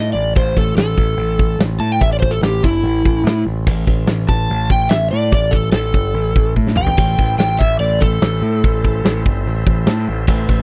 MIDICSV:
0, 0, Header, 1, 5, 480
1, 0, Start_track
1, 0, Key_signature, 0, "minor"
1, 0, Tempo, 413793
1, 418, Time_signature, 4, 2, 24, 8
1, 12319, End_track
2, 0, Start_track
2, 0, Title_t, "Electric slide guitar"
2, 0, Program_c, 0, 29
2, 0, Note_on_c, 0, 75, 84
2, 148, Note_off_c, 0, 75, 0
2, 153, Note_on_c, 0, 74, 86
2, 397, Note_off_c, 0, 74, 0
2, 424, Note_on_c, 0, 72, 77
2, 653, Note_off_c, 0, 72, 0
2, 672, Note_on_c, 0, 69, 92
2, 887, Note_off_c, 0, 69, 0
2, 901, Note_on_c, 0, 69, 86
2, 1828, Note_off_c, 0, 69, 0
2, 2086, Note_on_c, 0, 81, 103
2, 2206, Note_off_c, 0, 81, 0
2, 2228, Note_on_c, 0, 79, 76
2, 2333, Note_on_c, 0, 76, 86
2, 2337, Note_off_c, 0, 79, 0
2, 2449, Note_off_c, 0, 76, 0
2, 2470, Note_on_c, 0, 74, 87
2, 2545, Note_off_c, 0, 74, 0
2, 2550, Note_on_c, 0, 72, 91
2, 2677, Note_off_c, 0, 72, 0
2, 2679, Note_on_c, 0, 69, 88
2, 2802, Note_off_c, 0, 69, 0
2, 2831, Note_on_c, 0, 67, 83
2, 3054, Note_on_c, 0, 64, 94
2, 3055, Note_off_c, 0, 67, 0
2, 3984, Note_off_c, 0, 64, 0
2, 4972, Note_on_c, 0, 81, 100
2, 5437, Note_off_c, 0, 81, 0
2, 5470, Note_on_c, 0, 79, 87
2, 5675, Note_on_c, 0, 76, 98
2, 5694, Note_off_c, 0, 79, 0
2, 5916, Note_off_c, 0, 76, 0
2, 5930, Note_on_c, 0, 74, 94
2, 6163, Note_off_c, 0, 74, 0
2, 6199, Note_on_c, 0, 74, 94
2, 6393, Note_on_c, 0, 69, 91
2, 6418, Note_off_c, 0, 74, 0
2, 6625, Note_off_c, 0, 69, 0
2, 6639, Note_on_c, 0, 69, 89
2, 7576, Note_off_c, 0, 69, 0
2, 7853, Note_on_c, 0, 79, 99
2, 8551, Note_off_c, 0, 79, 0
2, 8570, Note_on_c, 0, 79, 79
2, 8802, Note_on_c, 0, 76, 97
2, 8804, Note_off_c, 0, 79, 0
2, 9040, Note_off_c, 0, 76, 0
2, 9047, Note_on_c, 0, 74, 93
2, 9283, Note_off_c, 0, 74, 0
2, 9287, Note_on_c, 0, 69, 89
2, 10688, Note_off_c, 0, 69, 0
2, 12319, End_track
3, 0, Start_track
3, 0, Title_t, "Tonewheel organ"
3, 0, Program_c, 1, 16
3, 8095, Note_on_c, 1, 70, 62
3, 8106, Note_on_c, 1, 73, 68
3, 8108, Note_on_c, 1, 65, 69
3, 8252, Note_on_c, 1, 64, 68
3, 8253, Note_off_c, 1, 70, 0
3, 8254, Note_on_c, 1, 69, 65
3, 8259, Note_off_c, 1, 73, 0
3, 8260, Note_off_c, 1, 65, 0
3, 8267, Note_on_c, 1, 72, 68
3, 11900, Note_off_c, 1, 64, 0
3, 11901, Note_off_c, 1, 69, 0
3, 11908, Note_off_c, 1, 72, 0
3, 11924, Note_on_c, 1, 64, 74
3, 11926, Note_on_c, 1, 69, 77
3, 11928, Note_on_c, 1, 72, 76
3, 12319, Note_off_c, 1, 64, 0
3, 12319, Note_off_c, 1, 69, 0
3, 12319, Note_off_c, 1, 72, 0
3, 12319, End_track
4, 0, Start_track
4, 0, Title_t, "Picked electric bass"
4, 0, Program_c, 2, 34
4, 0, Note_on_c, 2, 45, 87
4, 145, Note_off_c, 2, 45, 0
4, 162, Note_on_c, 2, 33, 82
4, 389, Note_off_c, 2, 33, 0
4, 410, Note_on_c, 2, 33, 86
4, 633, Note_off_c, 2, 33, 0
4, 656, Note_on_c, 2, 33, 87
4, 867, Note_off_c, 2, 33, 0
4, 874, Note_on_c, 2, 33, 89
4, 1104, Note_off_c, 2, 33, 0
4, 1124, Note_on_c, 2, 33, 85
4, 1349, Note_off_c, 2, 33, 0
4, 1356, Note_on_c, 2, 33, 84
4, 1803, Note_off_c, 2, 33, 0
4, 1845, Note_on_c, 2, 33, 92
4, 2069, Note_off_c, 2, 33, 0
4, 2084, Note_on_c, 2, 45, 85
4, 2308, Note_off_c, 2, 45, 0
4, 2332, Note_on_c, 2, 33, 80
4, 2771, Note_off_c, 2, 33, 0
4, 2799, Note_on_c, 2, 33, 89
4, 3025, Note_off_c, 2, 33, 0
4, 3059, Note_on_c, 2, 31, 80
4, 3276, Note_off_c, 2, 31, 0
4, 3285, Note_on_c, 2, 33, 83
4, 3508, Note_off_c, 2, 33, 0
4, 3534, Note_on_c, 2, 33, 76
4, 3750, Note_off_c, 2, 33, 0
4, 3757, Note_on_c, 2, 45, 86
4, 3983, Note_off_c, 2, 45, 0
4, 4005, Note_on_c, 2, 33, 85
4, 4227, Note_off_c, 2, 33, 0
4, 4256, Note_on_c, 2, 33, 90
4, 4474, Note_off_c, 2, 33, 0
4, 4489, Note_on_c, 2, 33, 81
4, 4710, Note_off_c, 2, 33, 0
4, 4731, Note_on_c, 2, 33, 91
4, 4951, Note_off_c, 2, 33, 0
4, 4974, Note_on_c, 2, 33, 83
4, 5192, Note_off_c, 2, 33, 0
4, 5221, Note_on_c, 2, 33, 87
4, 5655, Note_off_c, 2, 33, 0
4, 5697, Note_on_c, 2, 33, 92
4, 5914, Note_off_c, 2, 33, 0
4, 5947, Note_on_c, 2, 45, 88
4, 6159, Note_off_c, 2, 45, 0
4, 6169, Note_on_c, 2, 33, 82
4, 6609, Note_off_c, 2, 33, 0
4, 6651, Note_on_c, 2, 33, 94
4, 6871, Note_off_c, 2, 33, 0
4, 6887, Note_on_c, 2, 31, 84
4, 7109, Note_off_c, 2, 31, 0
4, 7121, Note_on_c, 2, 33, 83
4, 7345, Note_off_c, 2, 33, 0
4, 7370, Note_on_c, 2, 33, 81
4, 7590, Note_off_c, 2, 33, 0
4, 7610, Note_on_c, 2, 45, 82
4, 7830, Note_off_c, 2, 45, 0
4, 7850, Note_on_c, 2, 33, 83
4, 8070, Note_off_c, 2, 33, 0
4, 8090, Note_on_c, 2, 33, 85
4, 8311, Note_off_c, 2, 33, 0
4, 8327, Note_on_c, 2, 33, 85
4, 8549, Note_off_c, 2, 33, 0
4, 8566, Note_on_c, 2, 33, 95
4, 8789, Note_off_c, 2, 33, 0
4, 8817, Note_on_c, 2, 33, 86
4, 9035, Note_off_c, 2, 33, 0
4, 9041, Note_on_c, 2, 33, 86
4, 9486, Note_off_c, 2, 33, 0
4, 9534, Note_on_c, 2, 33, 89
4, 9754, Note_off_c, 2, 33, 0
4, 9768, Note_on_c, 2, 45, 88
4, 9990, Note_off_c, 2, 45, 0
4, 10017, Note_on_c, 2, 33, 90
4, 10455, Note_off_c, 2, 33, 0
4, 10482, Note_on_c, 2, 33, 87
4, 10708, Note_off_c, 2, 33, 0
4, 10739, Note_on_c, 2, 31, 86
4, 10957, Note_off_c, 2, 31, 0
4, 10975, Note_on_c, 2, 33, 81
4, 11195, Note_off_c, 2, 33, 0
4, 11212, Note_on_c, 2, 33, 85
4, 11434, Note_off_c, 2, 33, 0
4, 11459, Note_on_c, 2, 45, 90
4, 11677, Note_off_c, 2, 45, 0
4, 11695, Note_on_c, 2, 33, 94
4, 11916, Note_off_c, 2, 33, 0
4, 11922, Note_on_c, 2, 33, 90
4, 12149, Note_off_c, 2, 33, 0
4, 12162, Note_on_c, 2, 33, 85
4, 12319, Note_off_c, 2, 33, 0
4, 12319, End_track
5, 0, Start_track
5, 0, Title_t, "Drums"
5, 420, Note_on_c, 9, 36, 115
5, 423, Note_on_c, 9, 49, 93
5, 536, Note_off_c, 9, 36, 0
5, 539, Note_off_c, 9, 49, 0
5, 657, Note_on_c, 9, 36, 91
5, 773, Note_off_c, 9, 36, 0
5, 894, Note_on_c, 9, 46, 52
5, 903, Note_on_c, 9, 38, 103
5, 1010, Note_off_c, 9, 46, 0
5, 1019, Note_off_c, 9, 38, 0
5, 1132, Note_on_c, 9, 36, 92
5, 1248, Note_off_c, 9, 36, 0
5, 1383, Note_on_c, 9, 46, 50
5, 1499, Note_off_c, 9, 46, 0
5, 1617, Note_on_c, 9, 36, 89
5, 1733, Note_off_c, 9, 36, 0
5, 1854, Note_on_c, 9, 46, 59
5, 1862, Note_on_c, 9, 38, 119
5, 1970, Note_off_c, 9, 46, 0
5, 1978, Note_off_c, 9, 38, 0
5, 2330, Note_on_c, 9, 46, 57
5, 2336, Note_on_c, 9, 36, 102
5, 2446, Note_off_c, 9, 46, 0
5, 2452, Note_off_c, 9, 36, 0
5, 2579, Note_on_c, 9, 36, 88
5, 2695, Note_off_c, 9, 36, 0
5, 2814, Note_on_c, 9, 46, 52
5, 2822, Note_on_c, 9, 38, 105
5, 2930, Note_off_c, 9, 46, 0
5, 2938, Note_off_c, 9, 38, 0
5, 3062, Note_on_c, 9, 36, 83
5, 3178, Note_off_c, 9, 36, 0
5, 3304, Note_on_c, 9, 46, 49
5, 3420, Note_off_c, 9, 46, 0
5, 3543, Note_on_c, 9, 36, 85
5, 3659, Note_off_c, 9, 36, 0
5, 3785, Note_on_c, 9, 46, 58
5, 3793, Note_on_c, 9, 38, 110
5, 3901, Note_off_c, 9, 46, 0
5, 3909, Note_off_c, 9, 38, 0
5, 4255, Note_on_c, 9, 36, 111
5, 4266, Note_on_c, 9, 57, 95
5, 4371, Note_off_c, 9, 36, 0
5, 4382, Note_off_c, 9, 57, 0
5, 4493, Note_on_c, 9, 36, 89
5, 4609, Note_off_c, 9, 36, 0
5, 4718, Note_on_c, 9, 46, 57
5, 4726, Note_on_c, 9, 38, 102
5, 4834, Note_off_c, 9, 46, 0
5, 4842, Note_off_c, 9, 38, 0
5, 4972, Note_on_c, 9, 36, 89
5, 5088, Note_off_c, 9, 36, 0
5, 5211, Note_on_c, 9, 46, 54
5, 5327, Note_off_c, 9, 46, 0
5, 5452, Note_on_c, 9, 36, 88
5, 5568, Note_off_c, 9, 36, 0
5, 5685, Note_on_c, 9, 46, 64
5, 5693, Note_on_c, 9, 38, 114
5, 5801, Note_off_c, 9, 46, 0
5, 5809, Note_off_c, 9, 38, 0
5, 6171, Note_on_c, 9, 46, 59
5, 6175, Note_on_c, 9, 36, 109
5, 6287, Note_off_c, 9, 46, 0
5, 6291, Note_off_c, 9, 36, 0
5, 6413, Note_on_c, 9, 36, 95
5, 6529, Note_off_c, 9, 36, 0
5, 6631, Note_on_c, 9, 46, 51
5, 6639, Note_on_c, 9, 38, 107
5, 6747, Note_off_c, 9, 46, 0
5, 6755, Note_off_c, 9, 38, 0
5, 6891, Note_on_c, 9, 36, 85
5, 7007, Note_off_c, 9, 36, 0
5, 7131, Note_on_c, 9, 46, 52
5, 7247, Note_off_c, 9, 46, 0
5, 7375, Note_on_c, 9, 36, 90
5, 7491, Note_off_c, 9, 36, 0
5, 7614, Note_on_c, 9, 36, 61
5, 7730, Note_off_c, 9, 36, 0
5, 7738, Note_on_c, 9, 38, 65
5, 7836, Note_on_c, 9, 45, 88
5, 7854, Note_off_c, 9, 38, 0
5, 7952, Note_off_c, 9, 45, 0
5, 7964, Note_on_c, 9, 43, 83
5, 8080, Note_off_c, 9, 43, 0
5, 8087, Note_on_c, 9, 46, 56
5, 8087, Note_on_c, 9, 57, 91
5, 8097, Note_on_c, 9, 36, 106
5, 8203, Note_off_c, 9, 46, 0
5, 8203, Note_off_c, 9, 57, 0
5, 8213, Note_off_c, 9, 36, 0
5, 8337, Note_on_c, 9, 36, 86
5, 8453, Note_off_c, 9, 36, 0
5, 8575, Note_on_c, 9, 46, 55
5, 8583, Note_on_c, 9, 38, 96
5, 8691, Note_off_c, 9, 46, 0
5, 8699, Note_off_c, 9, 38, 0
5, 8823, Note_on_c, 9, 36, 90
5, 8939, Note_off_c, 9, 36, 0
5, 9065, Note_on_c, 9, 46, 55
5, 9181, Note_off_c, 9, 46, 0
5, 9302, Note_on_c, 9, 36, 83
5, 9418, Note_off_c, 9, 36, 0
5, 9530, Note_on_c, 9, 46, 65
5, 9538, Note_on_c, 9, 38, 116
5, 9646, Note_off_c, 9, 46, 0
5, 9654, Note_off_c, 9, 38, 0
5, 10022, Note_on_c, 9, 46, 60
5, 10023, Note_on_c, 9, 36, 108
5, 10138, Note_off_c, 9, 46, 0
5, 10139, Note_off_c, 9, 36, 0
5, 10260, Note_on_c, 9, 36, 88
5, 10376, Note_off_c, 9, 36, 0
5, 10495, Note_on_c, 9, 46, 53
5, 10503, Note_on_c, 9, 38, 112
5, 10611, Note_off_c, 9, 46, 0
5, 10619, Note_off_c, 9, 38, 0
5, 10739, Note_on_c, 9, 36, 91
5, 10855, Note_off_c, 9, 36, 0
5, 10982, Note_on_c, 9, 46, 54
5, 11098, Note_off_c, 9, 46, 0
5, 11213, Note_on_c, 9, 36, 90
5, 11329, Note_off_c, 9, 36, 0
5, 11440, Note_on_c, 9, 46, 57
5, 11448, Note_on_c, 9, 38, 109
5, 11556, Note_off_c, 9, 46, 0
5, 11564, Note_off_c, 9, 38, 0
5, 11915, Note_on_c, 9, 57, 95
5, 11926, Note_on_c, 9, 36, 103
5, 12031, Note_off_c, 9, 57, 0
5, 12042, Note_off_c, 9, 36, 0
5, 12167, Note_on_c, 9, 36, 91
5, 12283, Note_off_c, 9, 36, 0
5, 12319, End_track
0, 0, End_of_file